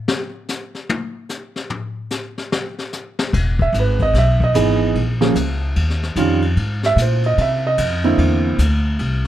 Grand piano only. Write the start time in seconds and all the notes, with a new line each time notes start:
3.62 E5
3.80 B4
4.02 D#5
4.18 E5
4.44 D#5
4.55 E3 B3 D#4 G#4
5.21 F3 A#3 C#4 G#4
6.17 D#3 G3 C#4 F4
6.86 E5
7.02 C5
7.26 D#5
7.41 E5
7.67 D#5
8.04 D3 A#3 C4 E4